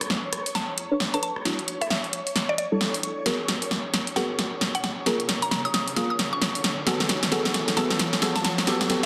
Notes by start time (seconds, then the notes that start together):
Already playing: B1 C#5 C#6
0.01 cross-stick, closed hi-hat
0.10 snare
0.33 cross-stick, closed hi-hat
0.46 closed hi-hat
0.55 A5, snare, closed hi-hat
0.78 E2, closed hi-hat
0.91 B1 D4 A4 B4 C#5
1.00 snare
1.14 D4 A4 B4 C#5 A5, closed hi-hat
1.23 A5, closed hi-hat
1.36 cross-stick
1.45 G3 D4 E4 F#4, snare, closed hi-hat
1.59 E1, closed hi-hat
1.68 closed hi-hat
1.81 E5, cross-stick, closed hi-hat
1.90 E5, snare
2.04 closed hi-hat
2.13 closed hi-hat
2.27 closed hi-hat
2.36 snare, closed hi-hat
2.49 D5
2.58 E1 D5, closed hi-hat
2.72 G3 D4 E4 A4
2.81 snare
2.94 closed hi-hat
3.03 E2, closed hi-hat
3.17 G#1
3.26 B3 F#4 G#4 A#4, snare, closed hi-hat, riser
3.39 G#1
3.48 snare, closed hi-hat
3.62 closed hi-hat
3.71 snare
3.94 snare, closed hi-hat
4.07 closed hi-hat
4.16 B3 F#4 G#4 A#4 F#5, snare, closed hi-hat
4.39 C#2, snare, closed hi-hat
4.52 G#1
4.61 snare
4.75 F#5, closed hi-hat
4.84 F#5, snare, closed hi-hat
5.06 A#3 F4 G#4 A#4, snare, closed hi-hat
5.20 closed hi-hat
5.29 snare, closed hi-hat
5.42 A#5, closed hi-hat
5.51 A#5, snare
5.65 D#6, closed hi-hat
5.74 D#6, snare, closed hi-hat
5.88 closed hi-hat
5.96 A#3 F4 G#4 A#4 D#6, snare, closed hi-hat
6.10 D#6
6.19 snare, closed hi-hat
6.33 C#6
6.42 snare
6.55 closed hi-hat
6.64 snare, closed hi-hat
6.87 B3 F#4 G#4 A4, snare, closed hi-hat
7.00 snare
7.09 snare, closed hi-hat
7.23 snare, closed hi-hat
7.32 B3 F#4 G#4 A4, snare
7.45 snare
7.54 snare, closed hi-hat
7.68 snare, closed hi-hat
7.77 B3 F#4 G#4 A4 A5, snare, closed hi-hat
7.90 snare
7.99 snare, closed hi-hat
8.13 snare
8.22 B3 F#4 G#4 A4, snare
8.36 A5, snare, closed hi-hat
8.44 A5, snare, closed hi-hat
8.58 snare
8.67 B3 F#4 G4 A4, snare, closed hi-hat
8.81 snare, closed hi-hat
8.90 B3 F#4 G4 A4, snare, closed hi-hat